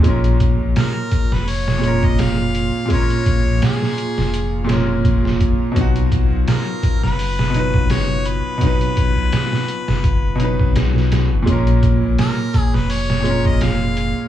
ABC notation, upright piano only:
X:1
M:4/4
L:1/8
Q:"Swing 16ths" 1/4=84
K:Bbphr
V:1 name="Upright piano"
[B,,A,DB]4- [B,,A,DB] [B,,A,DB]3 | [B,,A,DB]4- [B,,A,DB] [B,,A,DB]3 | [=B,,^F,^D^F]4- [B,,F,DF] [B,,F,D=B]3 | [=B,,^F,^D=B]4- [B,,F,DB] [B,,F,DB]3 |
[B,,A,DB]4- [B,,A,DB] [B,,A,DB]3 |]